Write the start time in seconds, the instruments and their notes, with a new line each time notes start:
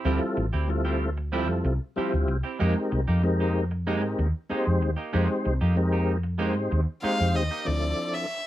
0.04 fretless electric bass D2, clean electric guitar F3 C4 E4 G4, tonewheel organ G3 C4 E4 F4 A4
0.21 muted clean electric guitar stroke
0.37 fretless electric bass A1, muted clean electric guitar stroke
0.53 fretless electric bass D2, clean electric guitar C4 E4 G4
0.68 tonewheel organ G3 C4 E4 F4 A4, muted clean electric guitar stroke
0.85 clean electric guitar C4 E4 G4
1.18 muted clean electric guitar stroke
1.32 clean electric guitar F3 C4 E4 G4, tonewheel organ G3 C4 E4 F4 A4
1.48 fretless electric bass F2, muted clean electric guitar stroke
1.64 fretless electric bass C2, muted clean electric guitar stroke
1.96 clean electric guitar F3 C4 E4 G4, tonewheel organ G3 C4 E4 F4 G4, muted fretless electric bass stroke
2.12 fretless electric bass D2, muted clean electric guitar stroke
2.28 fretless electric bass C2, muted clean electric guitar stroke
2.44 clean electric guitar C4 E4 G4
2.59 fretless electric bass F2, clean electric guitar G#3 A#3 D#4 G4, tonewheel organ G#3 C4 D#4 G4 A#4
2.76 muted clean electric guitar stroke
2.92 fretless electric bass C2, muted clean electric guitar stroke
3.08 fretless electric bass F2, clean electric guitar A#3 D#4 G4
3.23 tonewheel organ G#3 C4 D#4 G4 A#4, muted clean electric guitar stroke
3.40 clean electric guitar A#3 D#4 G4
3.71 muted clean electric guitar stroke
3.86 tonewheel organ G#3 C4 D#4 G4 A#4, clean electric guitar G#3 A#3 D#4 G4
4.03 fretless electric bass G#2, muted clean electric guitar stroke
4.19 fretless electric bass D#2, muted clean electric guitar stroke
4.50 tonewheel organ G#3 C4 D#4 G4 C5, clean electric guitar G#3 A#3 D#4 G4, muted fretless electric bass stroke
4.65 fretless electric bass F2, muted clean electric guitar stroke
4.81 fretless electric bass D#2, muted clean electric guitar stroke
4.97 clean electric guitar A#3 D#4 G4
5.13 fretless electric bass F2, tonewheel organ G#3 C4 D#4 G4 C5, clean electric guitar G#3 A#3 D#4 G4
5.29 muted clean electric guitar stroke
5.45 fretless electric bass C2, muted clean electric guitar stroke
5.61 fretless electric bass F2, clean electric guitar A#3 D#4 G4
5.76 tonewheel organ G#3 C4 D#4 G4 A#4, muted clean electric guitar stroke
5.92 clean electric guitar A#3 D#4 G4
6.24 muted clean electric guitar stroke
6.38 clean electric guitar G#3 A#3 D#4 G4, tonewheel organ G#3 C4 D#4 G4 C5
6.55 fretless electric bass G#2, muted clean electric guitar stroke
6.71 fretless electric bass D#2, muted clean electric guitar stroke
7.02 tonewheel organ G#3 C4 D#4 G4 C5, clean electric guitar G#3 A#3 D#4 G4, violin F5, muted fretless electric bass stroke
7.19 fretless electric bass F2, muted clean electric guitar stroke
7.35 fretless electric bass D#2, violin D#5, muted clean electric guitar stroke
7.51 clean electric guitar A#3 D#4 G4
7.65 fretless electric bass D2, tonewheel organ F3 C4 D4 E4 A4, violin D5
8.14 violin E5